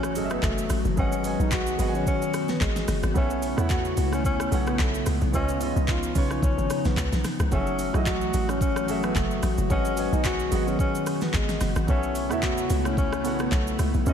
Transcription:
Already playing: A1 E3 F#3 A3 C#4 F#4 G#4 A4 E5, impact
0.03 cross-stick, shaker
0.14 F#1 F#3 C#4 G#4 A4 D#5, open hi-hat, shaker
0.25 E5
0.30 B3, cross-stick, shaker
0.43 F#1 A3, kick, clap, shaker
0.58 shaker
0.70 A1, cross-stick, open hi-hat, shaker
0.85 F#1, shaker
0.96 G#1 D#3 G#3 B3 C#4 F#4 G#4 B4 D#5 F#5, kick, shaker
1.12 shaker
1.23 G#3 G#4 B4 D#5 G#5, open hi-hat, shaker
1.39 B1 D#4, shaker
1.51 F#4, kick, clap, shaker
1.67 shaker
1.78 G#1 G#3 G#4 B4 D#5 F#5, open hi-hat, shaker
1.88 G#5
1.95 C#4, shaker
2.06 C#4, kick, shaker
2.22 shaker
2.34 cross-stick, open hi-hat, shaker
2.48 B3, snare, shaker
2.61 G#1 G#3, kick, clap, shaker
2.76 snare, shaker
2.88 F#1, cross-stick, snare, open hi-hat, shaker
3.03 G#1, cross-stick, shaker
3.14 B1 C#3 A3 B3 C#4 E4 F#4 A4 C#5 E5, kick, shaker
3.30 shaker
3.42 open hi-hat, shaker
3.57 E2 B3 E4 F#4 A4 C#5 F#5, cross-stick, shaker
3.70 F#4, kick, clap, shaker
3.85 shaker
3.97 C#2, open hi-hat, shaker
4.13 C#4, cross-stick, shaker
4.24 C#4, kick, shaker
4.40 cross-stick, shaker
4.51 B1 B3 F#4 A4 C#5 F#5, open hi-hat, shaker
4.67 B3, cross-stick, shaker
4.79 B1 A3, kick, clap, shaker
4.95 shaker
5.06 C#2, cross-stick, open hi-hat, shaker
5.21 B1, shaker
5.32 C#2 C#3 F3 C#4 D#4 F4 B4 D#5, kick, shaker
5.49 shaker
5.60 C#3 C#4 F4 B4 D#5, open hi-hat, shaker
5.76 C#2, shaker
5.88 F4, kick, clap, shaker
6.03 shaker
6.14 B1 C#3 C#4 F4 B4 C#5, kick, open hi-hat, shaker
6.31 C#4, cross-stick, shaker
6.42 B1 C#4, kick, shaker
6.58 G#1, shaker
6.70 cross-stick, open hi-hat, shaker
6.85 B1 B3, snare, shaker
6.97 C#2, kick, clap, shaker
7.12 B1, snare, shaker
7.24 cross-stick, snare, open hi-hat, shaker
7.40 C#2, cross-stick, shaker
7.51 F#1 E3 F#3 A3 C#4 F#4 G#4 A4 E5, kick, shaker
7.67 shaker
7.79 open hi-hat, shaker
7.93 B1 F#3 E4 F#4 G#4 A4 D#5, cross-stick, shaker
8.06 F#4, kick, clap, shaker
8.21 shaker
8.34 A1, open hi-hat, shaker
8.49 C#4, cross-stick, shaker
8.61 C#4, kick, shaker
8.76 cross-stick, shaker
8.87 F#1 F#3 F#4 G#4 A4 E5, open hi-hat, shaker
9.03 B3, cross-stick, shaker
9.15 F#1 A3, kick, clap, shaker
9.31 shaker
9.43 A1, cross-stick, open hi-hat, shaker
9.58 F#1, shaker
9.69 G#1 D#3 G#3 B3 C#4 G#4 B4 D#5 F#5, kick, shaker
9.85 shaker
9.96 G#3 G#4 B4 D#5 G#5, open hi-hat, shaker
10.12 B1 D#4, shaker
10.24 F#4, kick, clap, shaker
10.40 shaker
10.51 G#1 G#3 G#4 B4 D#5 F#5, open hi-hat, shaker
10.68 C#4, shaker
10.79 C#4, kick, shaker
10.95 shaker
11.06 cross-stick, open hi-hat, shaker
11.21 B3, snare, shaker
11.34 G#1 G#3, kick, clap, shaker
11.49 snare, shaker
11.61 F#1, cross-stick, snare, open hi-hat, shaker
11.76 G#1, cross-stick, shaker
11.87 B1 C#3 A3 B3 C#4 E4 F#4 A4 C#5 E5, kick, shaker
12.03 shaker
12.15 open hi-hat, shaker
12.29 E2 B3 E4 F#4 A4 C#5 E5, cross-stick, shaker
12.43 F#4, kick, clap, shaker
12.58 shaker
12.70 C#2, open hi-hat, shaker
12.85 C#4, cross-stick, shaker
12.97 C#4, kick, shaker
13.13 cross-stick, shaker
13.23 B1 B3 F#4 A4 C#5 F#5, open hi-hat, shaker
13.39 B3, cross-stick, shaker
13.52 B1 A3, kick, clap, shaker
13.67 shaker
13.79 C#2, cross-stick, open hi-hat, shaker
13.94 B1, shaker
14.05 C#2 C#3 C#4 D#4 F4 B4 D#5, shaker

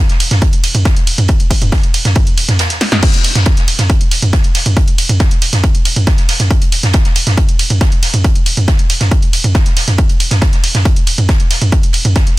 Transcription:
0.09 snare, closed hi-hat
0.20 closed hi-hat, open hi-hat, ride
0.31 snare, closed hi-hat, mid tom
0.42 kick, closed hi-hat, ride
0.53 closed hi-hat
0.64 closed hi-hat, open hi-hat, ride
0.75 closed hi-hat, mid tom
0.85 kick, snare, closed hi-hat, ride
0.96 closed hi-hat
1.07 open hi-hat, ride
1.18 closed hi-hat, mid tom
1.28 kick, closed hi-hat, ride
1.40 closed hi-hat
1.51 kick, closed hi-hat, open hi-hat, ride
1.62 closed hi-hat, mid tom
1.72 kick, snare, closed hi-hat, open hi-hat, ride
1.83 closed hi-hat
1.94 closed hi-hat, open hi-hat, ride
2.05 snare, closed hi-hat, mid tom
2.15 kick, closed hi-hat, mid tom, ride
2.27 closed hi-hat
2.38 closed hi-hat, open hi-hat, ride
2.49 snare, closed hi-hat, mid tom
2.59 snare, closed hi-hat, ride
2.70 snare, closed hi-hat
2.81 snare, closed hi-hat, open hi-hat, ride
2.92 snare, closed hi-hat, mid tom
3.03 kick, closed hi-hat, crash, ride
3.14 closed hi-hat
3.24 closed hi-hat, open hi-hat, ride
3.35 snare, closed hi-hat, mid tom
3.46 kick, snare, closed hi-hat, ride
3.57 snare, closed hi-hat
3.68 closed hi-hat, open hi-hat, ride
3.79 snare, closed hi-hat, mid tom
3.90 kick, closed hi-hat, ride
4.01 closed hi-hat
4.11 closed hi-hat, open hi-hat, ride
4.22 closed hi-hat, mid tom
4.33 kick, snare, closed hi-hat, ride
4.44 closed hi-hat
4.55 snare, closed hi-hat, open hi-hat, ride
4.66 closed hi-hat, mid tom
4.77 kick, closed hi-hat, ride
4.88 closed hi-hat
4.98 closed hi-hat, open hi-hat, ride
5.09 closed hi-hat, mid tom
5.20 kick, snare, closed hi-hat, ride
5.31 closed hi-hat
5.42 closed hi-hat, open hi-hat, ride
5.53 snare, closed hi-hat, mid tom
5.64 kick, closed hi-hat, ride
5.75 closed hi-hat
5.85 closed hi-hat, open hi-hat, ride
5.96 closed hi-hat, mid tom
6.07 kick, snare, closed hi-hat, ride
6.18 snare, closed hi-hat
6.29 snare, closed hi-hat, open hi-hat, ride
6.40 snare, closed hi-hat, mid tom
6.51 kick, closed hi-hat, ride
6.62 closed hi-hat
6.72 closed hi-hat, open hi-hat, ride
6.83 snare, closed hi-hat, mid tom
6.93 kick, snare, closed hi-hat, ride
7.04 snare, closed hi-hat
7.16 closed hi-hat, open hi-hat, ride
7.27 snare, closed hi-hat, mid tom
7.37 kick, closed hi-hat, ride
7.49 closed hi-hat
7.59 closed hi-hat, open hi-hat, ride
7.70 closed hi-hat, mid tom
7.81 kick, snare, closed hi-hat, ride
7.92 closed hi-hat
8.03 snare, closed hi-hat, open hi-hat, ride
8.14 closed hi-hat, mid tom
8.24 kick, closed hi-hat, ride
8.35 closed hi-hat
8.46 closed hi-hat, open hi-hat, ride
8.57 closed hi-hat, mid tom
8.68 kick, snare, closed hi-hat, ride
8.79 closed hi-hat
8.90 closed hi-hat, open hi-hat, ride
9.00 snare, closed hi-hat, mid tom
9.11 kick, closed hi-hat, ride
9.22 closed hi-hat
9.33 closed hi-hat, open hi-hat, ride
9.44 closed hi-hat, mid tom
9.55 kick, snare, closed hi-hat, ride
9.66 snare, closed hi-hat
9.77 snare, closed hi-hat, open hi-hat, ride
9.87 snare, closed hi-hat, mid tom
9.98 kick, closed hi-hat, ride
10.09 closed hi-hat
10.20 closed hi-hat, open hi-hat, ride
10.31 snare, closed hi-hat, mid tom
10.42 kick, snare, closed hi-hat, ride
10.53 snare, closed hi-hat
10.64 closed hi-hat, open hi-hat, ride
10.75 snare, closed hi-hat, mid tom
10.85 kick, closed hi-hat, ride
10.96 closed hi-hat
11.07 closed hi-hat, open hi-hat, ride
11.18 closed hi-hat, mid tom
11.29 kick, snare, closed hi-hat, ride
11.40 closed hi-hat
11.51 snare, closed hi-hat, open hi-hat, ride
11.62 closed hi-hat, mid tom
11.72 kick, closed hi-hat, ride
11.83 closed hi-hat
11.93 closed hi-hat, open hi-hat, ride
12.05 closed hi-hat, mid tom
12.16 kick, snare, closed hi-hat, ride
12.27 closed hi-hat

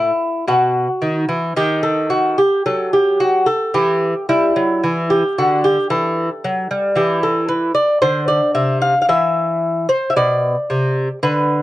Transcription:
Already playing: A2 E4
0.48 B2 F#4
1.02 D#3
1.29 E3
1.56 D#3 G4
1.83 A4
2.10 F#4
2.38 G4
2.66 F#3 A4
2.93 G4
3.20 F#4
3.46 A4
3.74 E3 G4
4.29 G3 E4
4.56 F#3
4.84 E3
5.10 G4
5.38 D3 F#4
5.64 G4
5.90 E3 A4
6.44 F#3
6.71 G3
6.96 E3 G4
7.23 A4
7.48 B4
7.75 D5
8.02 D3 C5
8.28 D5
8.55 C3 E5
8.82 F5
9.02 F5
9.09 E3 E5
9.89 C5
10.10 E5
10.16 B2 D5
10.70 C3
11.23 D3 B4

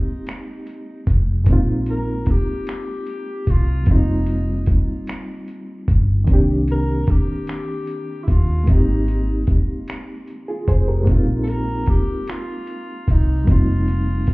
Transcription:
Already playing: G#3 A#3 C4 D#4 G4
0.27 finger snap, closed hi-hat
0.67 closed hi-hat
1.07 F1, kick, closed hi-hat
1.44 A#1 G#3 A#3, kick, closed hi-hat
1.48 C4 D#4
1.53 F4
1.86 closed hi-hat
1.90 A#4
2.26 muted fingered electric bass stroke, kick, closed hi-hat
2.31 G4
2.67 finger snap, closed hi-hat
3.07 closed hi-hat
3.47 C2 F4, kick, closed hi-hat
3.83 G3 A#3, kick, closed hi-hat
3.87 F1 C4 D#4
3.92 F4
4.26 closed hi-hat
4.66 kick, closed hi-hat
5.07 finger snap, closed hi-hat
5.48 closed hi-hat
5.88 G1, kick, closed hi-hat
6.24 D#3 A#3, kick, closed hi-hat
6.29 C2 C4 D4
6.33 G4
6.68 A#4, closed hi-hat
7.07 G4, muted fingered electric bass stroke, kick, closed hi-hat
7.47 finger snap, closed hi-hat
7.87 closed hi-hat
8.23 E4
8.28 D#2 F4, kick, closed hi-hat
8.64 G#3 A#3, kick, closed hi-hat
8.68 G#1 C4 D#4
8.73 G4
9.08 closed hi-hat
9.47 muted fingered electric bass stroke, kick, closed hi-hat
9.88 finger snap, closed hi-hat
10.28 closed hi-hat
10.48 F4 G#4
10.68 F1 G#4 C5, kick, closed hi-hat
10.88 G4 A#4
11.03 G#3 A#3, closed hi-hat
11.07 A#1 C4 D#4, kick
11.12 F4
11.44 A4, closed hi-hat
11.49 A#4
11.86 G4, muted fingered electric bass stroke, kick, closed hi-hat
12.27 F4, finger snap, closed hi-hat
12.67 closed hi-hat
13.08 C2 D#4, kick, closed hi-hat
13.44 G3 A#3, kick, closed hi-hat
13.48 F1 C4 D#4 F4
13.53 F4
13.88 closed hi-hat
14.27 muted fingered electric bass stroke, kick, closed hi-hat

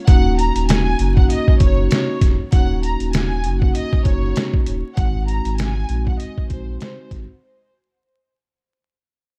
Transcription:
0.07 D#1 A#3 C#4 D#4 F#4 F#5, kick, closed hi-hat
0.39 A#5, closed hi-hat
0.56 D#1, closed hi-hat
0.68 G#5, snare, closed hi-hat
0.99 F#1 A#3 C#4 D#4 F#4, closed hi-hat
1.16 F#5, kick
1.30 D#5, closed hi-hat
1.48 kick
1.60 F#1 A#3 C#4 D#4 F#4 C#5, kick, closed hi-hat
1.91 C#5, snare, closed hi-hat
2.21 D#1, kick, snare, closed hi-hat
2.51 D#1 A#3 C#4 D#4 F#4 F#5, kick, closed hi-hat
2.83 A#5, closed hi-hat
3.00 D#1, closed hi-hat
3.12 G#5, snare, closed hi-hat
3.44 F#1 A#3 C#4 D#4 F#4, closed hi-hat
3.61 F#5, kick
3.75 D#5, closed hi-hat
3.93 kick
4.03 F#1 A#3 C#4 D#4 F#4 C#5, kick, closed hi-hat
4.36 snare, closed hi-hat
4.54 kick
4.66 D#1, closed hi-hat
4.96 G#1 G#3 C4 D#4 F#4 F#5, kick, closed hi-hat
5.28 A#5, closed hi-hat
5.45 G#1, closed hi-hat
5.57 G#5, snare, closed hi-hat
5.88 A#1 G#3 C4 D#4 F#4, closed hi-hat
6.07 F#5, kick
6.19 D#5, closed hi-hat
6.38 kick
6.49 A#1 G#3 C4 D#4 F#4 C5, kick, closed hi-hat
6.81 C5, snare, closed hi-hat
7.11 G#1, kick, snare, closed hi-hat

